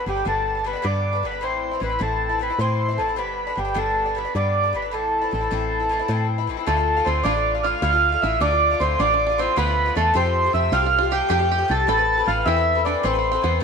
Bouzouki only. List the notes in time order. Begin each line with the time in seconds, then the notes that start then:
0.00 D3
0.06 G2 D3 B3 D4
0.16 D3 B3 D4
0.25 G2 D3 B3 D4
0.55 D3 B3 D4
0.64 G2 D3 B3 D4
0.73 D3 B3 D4
0.82 G2 D3 B3 D4
1.13 D3 B3 D4
1.23 G2 D3 B3 D4
1.32 D3 B3 D4
1.41 A2 E3 C4 E4
1.71 E3 C4 E4
1.80 A2 E3 C4 E4
1.89 E3 C4 E4
1.99 A2 E3 C4 E4
2.29 E3 C4 E4
2.39 A2 E3 C4 E4
2.50 E3 C4 E4
2.59 A2 E3 C4 E4
2.88 E3 C4 E4
2.98 A2 E3 C4 E4
3.07 E3 C4 E4
3.16 G2 D3 B3 D4
3.47 D3 B3 D4
3.55 G2 D3 B3 D4
3.65 D3 B3 D4
3.74 G2 D3 B3 D4
4.06 D3 B3 D4
4.15 G2 D3 B3 D4
4.25 D3 B3 D4
4.35 G2 D3 B3 D4
4.64 D3 B3 D4
4.73 G2 D3 B3 D4
4.82 D3 B3 D4
4.91 A2 E3 C4 E4
5.21 E3 C4 E4
5.31 A2 E3 C4 E4
5.41 E3 C4 E4
5.51 A2 E3 C4 E4
5.80 E3 C4 E4
5.89 A2 E3 C4 E4
5.99 E3 C4 E4
6.08 A2 E3 C4 E4
6.38 E3 C4 E4
6.47 A2 E3 C4 E4
6.57 E3 C4 E4
6.67 A2 D3 A3 F4
6.77 D3 A3 F4
6.97 D3 A3 F4
7.05 A2 D3 A3 F4
7.24 A2 D3 A3 F4
7.34 D3 A3 F4
7.55 D3 A3 F4
7.63 A2 D3 A3 F4
7.82 A2 D3 A3 F4
7.93 D3 A3 F4
8.12 D3 A3 F4
8.22 A2 D3 A3 F4
8.40 A2 D3 A3 F4
8.51 D3 A3 F4
8.71 D3 A3 F4
8.80 A2 D3 A3 F4
8.99 A2 D3 A3 F4
9.09 D3 A3 F4
9.29 D3 A3 F4
9.38 A2 D3 A3 F4
9.56 A2 D3 A3 F4
9.67 D3 A3 F4
9.86 D3 A3 F4
9.95 A2 D3 A3 F4
10.14 C3 F3 A3 G4
10.24 F3 A3 G4
10.44 F3 A3 G4
10.53 C3 F3 A3 G4
10.72 C3 F3 A3 G4
10.82 F3 A3 G4
11.02 F3 A3 G4
11.11 C3 F3 A3 G4
11.29 C3 F3 A3 G4
11.39 F3 A3 G4
11.58 F3 A3 G4
11.68 C3 F3 A3 G4
11.87 E3 C4 A4 B4
11.97 C4 A4 B4
12.17 C4 A4 B4
12.26 E3 C4 A4 B4
12.46 E3 C4 A4 B4
12.56 C4 A4 B4
12.75 C4 A4 B4
12.85 E3 C4 A4 B4
13.03 E3 C4 A4 B4
13.13 C4 A4 B4
13.33 C4 A4 B4
13.42 E3 C4 A4 B4
13.60 D3